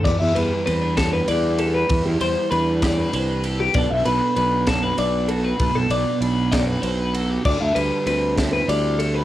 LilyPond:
<<
  \new Staff \with { instrumentName = "Clean electric guitar" } { \time 6/8 \key e \minor \tempo 4. = 65 d''16 e''16 b'8 b'8 a'16 b'16 d''8 a'16 b'16~ | b'16 g'16 c''8 b'8 d''16 b'16 c''16 b'16 a'16 g'16 | d''16 e''16 b'8 b'8 a'16 b'16 d''8 a'16 b'16~ | b'16 a'16 d''8 b'8 d''16 b'16 c''16 b'16 a'16 g'16 |
d''16 e''16 b'8 b'8 a'16 b'16 d''8 a'16 b'16 | }
  \new Staff \with { instrumentName = "Clean electric guitar" } { \time 6/8 \key e \minor << { r4 c'16 d'16 g'8 b'8 g'8 | r4 d'8 g'8 b'8 g'8 | <b d' fis' a'>4 d'8 fis'8 b'8 fis'8 | r4 d'8 fis'8 b'8 fis'8 |
r4 c'8 e'8 g'8 d'16 e'16 | } \\ { e8 g2~ g8 | e8 g2~ g8 | b,8 b2~ b8 | b,8 b2~ b8 |
d8 g2~ g8 | } >> }
  \new Staff \with { instrumentName = "Fingered electric bass" } { \clef bass \time 6/8 \key e \minor e,16 e,16 e,16 r16 e,4 e,4 | e,16 e,16 e,16 r16 e,4 c,4 | b,,16 b,,16 b,,16 r16 b,,4 b,,4 | b,,16 b,,16 b,,16 r16 b,,4 b,,4 |
d,16 d,16 d,16 r16 d,4 d,4 | }
  \new DrumStaff \with { instrumentName = "Drums" } \drummode { \time 6/8 <cymc bd>8 cymr8 cymr8 <bd cymr sn>8 cymr8 cymr8 | <bd cymr>8 cymr8 cymr8 <bd cymr sn>8 cymr8 cymr8 | <bd cymr>8 cymr8 cymr8 <bd cymr sn>8 cymr8 cymr8 | <bd cymr>8 cymr8 cymr8 <bd cymr sn>8 cymr8 cymr8 |
<cymc bd>8 cymr8 cymr8 <bd cymr sn>8 cymr8 cymr8 | }
>>